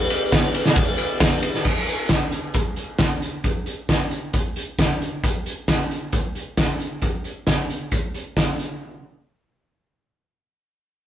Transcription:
0.10 ride medium
0.10 shaker medium
0.22 shaker soft
0.32 kick loud
0.32 snare loud
0.32 ride loud
0.32 shaker loud
0.54 ride medium
0.54 shaker medium
0.66 snare medium
0.76 kick loud
0.76 ride loud
0.76 shaker loud
0.89 shaker soft
0.97 ride medium
0.97 shaker medium
1.10 shaker soft
1.20 kick loud
1.20 snare loud
1.20 ride loud
1.20 shaker loud
1.42 ride medium
1.42 shaker medium
1.53 snare soft
1.53 shaker soft
1.64 kick loud
1.64 crash medium
1.87 closed hi-hat medium
2.09 kick loud
2.09 snare loud
2.09 closed hi-hat medium
2.32 closed hi-hat medium
2.54 kick loud
2.54 closed hi-hat medium
2.76 closed hi-hat medium
2.99 kick loud
2.99 snare loud
2.99 closed hi-hat medium
3.22 closed hi-hat medium
3.44 kick loud
3.44 closed hi-hat medium
3.66 closed hi-hat medium
3.89 kick loud
3.89 snare loud
3.89 closed hi-hat medium
4.11 closed hi-hat medium
4.33 kick loud
4.33 closed hi-hat medium
4.56 closed hi-hat medium
4.79 kick loud
4.79 snare loud
4.79 closed hi-hat medium
5.02 closed hi-hat medium
5.24 kick loud
5.24 closed hi-hat medium
5.46 closed hi-hat medium
5.68 kick medium
5.68 snare medium
5.68 closed hi-hat medium
5.91 closed hi-hat medium
6.13 kick loud
6.13 closed hi-hat medium
6.35 closed hi-hat medium
6.57 kick loud
6.57 snare loud
6.57 closed hi-hat medium
6.79 closed hi-hat medium
7.02 kick medium
7.02 closed hi-hat medium
7.24 closed hi-hat medium
7.47 kick medium
7.47 snare medium
7.47 closed hi-hat medium
7.70 closed hi-hat medium
7.91 kick loud
7.91 closed hi-hat medium
8.14 closed hi-hat soft
8.37 kick loud
8.37 snare loud
8.37 closed hi-hat medium
8.59 closed hi-hat medium

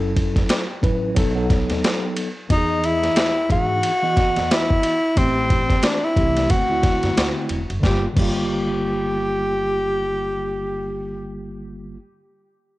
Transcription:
0.00 0.40 F#1 loud
0.00 0.64 F#3 medium
0.00 0.64 C#4 medium
0.00 0.65 E4 medium
0.00 0.65 A4 medium
0.16 kick medium
0.16 ride medium
0.36 kick medium
0.36 snare soft
0.36 ride soft
0.49 snare loud
0.49 hi-hat pedal medium
0.49 ride medium
0.82 1.17 A1 medium
0.82 1.14 F#3 medium
0.82 1.16 C#4 medium
0.82 1.17 E4 medium
0.82 1.17 B4 medium
0.82 kick medium
0.82 ride medium
1.15 1.62 B1 loud
1.15 1.32 F#3 medium
1.15 1.32 B3 medium
1.15 1.32 D#4 medium
1.15 1.33 A4 loud
1.15 kick medium
1.15 ride medium
1.35 2.26 F#3 medium
1.35 2.27 B3 medium
1.35 2.27 D#4 medium
1.35 2.27 A4 medium
1.50 kick medium
1.50 snare soft
1.50 ride medium
1.70 1.81 D#2 medium
1.70 snare soft
1.70 ride soft
1.84 snare loud
1.84 hi-hat pedal soft
1.84 ride medium
2.17 ride medium
2.49 3.07 E2 loud
2.49 3.31 E3 medium
2.49 3.31 B3 medium
2.49 2.87 D#4 loud
2.49 2.58 F#4 medium
2.49 3.31 D#5 medium
2.49 kick loud
2.49 ride medium
2.57 3.35 G#4 medium
2.84 3.51 E4 loud
2.84 ride medium
3.03 snare soft
3.03 ride soft
3.16 snare loud
3.16 hi-hat pedal soft
3.16 ride medium
3.49 3.78 G#2 medium
3.49 3.90 E3 medium
3.49 3.90 B3 medium
3.49 3.91 D#4 medium
3.49 4.53 F#4 loud
3.49 3.91 G#4 medium
3.49 kick medium
3.49 ride medium
3.83 ride medium
4.02 4.93 E3 medium
4.02 4.94 B3 medium
4.02 4.94 F#4 medium
4.02 4.94 D#5 medium
4.17 kick medium
4.17 snare soft
4.17 ride medium
4.36 4.48 E2 medium
4.36 snare soft
4.36 ride soft
4.51 5.19 E4 loud
4.51 snare loud
4.51 hi-hat pedal medium
4.51 ride medium
4.70 kick medium
4.83 ride medium
5.16 5.74 A1 loud
5.16 5.98 E3 medium
5.16 5.98 A3 medium
5.16 5.25 B3 soft
5.16 5.85 C4 medium
5.16 5.99 G4 medium
5.16 kick loud
5.16 ride medium
5.24 6.01 C4 medium
5.50 kick medium
5.50 ride medium
5.70 kick medium
5.70 snare soft
5.70 ride soft
5.83 6.06 D4 medium
5.83 snare loud
5.83 hi-hat pedal soft
5.83 ride medium
6.04 6.52 E4 loud
6.16 6.45 C2 medium
6.16 6.49 E3 medium
6.16 6.49 A3 medium
6.16 6.49 C4 medium
6.16 6.50 G4 medium
6.16 kick medium
6.16 ride medium
6.37 snare soft
6.37 ride soft
6.49 6.96 D2 medium
6.49 6.65 D3 medium
6.49 6.66 A3 medium
6.49 6.66 C4 medium
6.49 7.50 F#4 loud
6.49 6.66 F#4 medium
6.49 kick medium
6.49 ride medium
6.69 7.60 D3 medium
6.69 7.60 A3 medium
6.69 7.61 C4 medium
6.69 7.61 E4 medium
6.83 kick medium
6.83 snare soft
6.83 ride medium
7.03 7.15 F#2 medium
7.03 snare soft
7.03 ride soft
7.17 7.34 D2 medium
7.17 snare loud
7.17 hi-hat pedal soft
7.17 ride medium
7.49 7.67 E1 medium
7.49 ride medium
7.70 7.81 F#1 medium
7.70 ride soft
7.79 8.04 G1 medium
7.79 8.02 D3 medium
7.79 8.04 G3 medium
7.79 kick loud
7.84 8.05 A#3 medium
7.84 8.07 F4 medium
7.84 8.05 G4 medium
7.84 snare medium
8.13 11.96 G1 medium
8.13 11.94 D3 medium
8.13 11.95 G3 medium
8.13 kick loud
8.13 crash medium
8.18 11.97 A#3 medium
8.18 11.98 F4 medium
8.18 11.27 G4 medium

